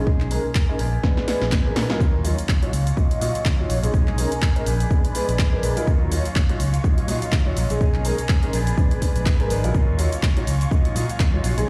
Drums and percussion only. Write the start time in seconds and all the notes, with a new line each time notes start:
0.07 kick
0.20 clap
0.31 open hi-hat
0.55 kick, clap
0.79 open hi-hat
1.03 kick, snare
1.17 snare
1.28 snare, open hi-hat
1.42 snare
1.52 kick, snare, clap
1.76 snare, open hi-hat
1.90 snare
2.00 kick, cabasa
2.25 open hi-hat, cabasa
2.38 closed hi-hat, cabasa
2.49 kick, clap, cabasa
2.63 closed hi-hat
2.73 open hi-hat, cabasa
2.87 closed hi-hat, cabasa
2.97 kick, cabasa
3.11 closed hi-hat
3.21 open hi-hat, cabasa
3.35 closed hi-hat, cabasa
3.45 kick, clap, cabasa
3.70 open hi-hat, cabasa
3.83 closed hi-hat, cabasa
3.94 kick, cabasa
4.08 clap
4.18 open hi-hat, cabasa
4.32 closed hi-hat, cabasa
4.42 kick, clap, cabasa
4.56 closed hi-hat
4.66 open hi-hat, cabasa
4.80 closed hi-hat, cabasa
4.91 kick, cabasa
5.05 closed hi-hat
5.15 open hi-hat, cabasa
5.29 closed hi-hat, cabasa
5.39 kick, clap, cabasa
5.63 open hi-hat, cabasa
5.77 closed hi-hat, cabasa
5.87 kick, cabasa
6.12 open hi-hat, cabasa
6.25 closed hi-hat, cabasa
6.36 kick, clap, cabasa
6.49 closed hi-hat
6.60 open hi-hat, cabasa
6.74 closed hi-hat, cabasa
6.84 kick, cabasa
6.98 closed hi-hat
7.08 open hi-hat, cabasa
7.22 closed hi-hat, cabasa
7.32 kick, clap, cabasa
7.57 open hi-hat, cabasa
7.70 closed hi-hat, cabasa
7.81 kick, cabasa
7.94 clap
8.05 open hi-hat, cabasa
8.18 closed hi-hat, cabasa
8.29 kick, clap, cabasa
8.43 closed hi-hat
8.53 open hi-hat, cabasa
8.67 closed hi-hat, cabasa
8.78 kick, cabasa
8.91 closed hi-hat
9.02 kick, open hi-hat, cabasa
9.16 closed hi-hat, cabasa
9.26 kick, clap, cabasa
9.40 closed hi-hat
9.50 open hi-hat, cabasa
9.64 closed hi-hat, cabasa
9.75 kick, cabasa
9.99 open hi-hat, cabasa
10.12 closed hi-hat, cabasa
10.23 kick, clap, cabasa
10.37 closed hi-hat
10.47 open hi-hat, cabasa
10.61 closed hi-hat, cabasa
10.71 kick, cabasa
10.85 closed hi-hat
10.96 open hi-hat, cabasa
11.09 closed hi-hat, cabasa
11.20 kick, clap, cabasa
11.44 open hi-hat, cabasa
11.58 closed hi-hat, cabasa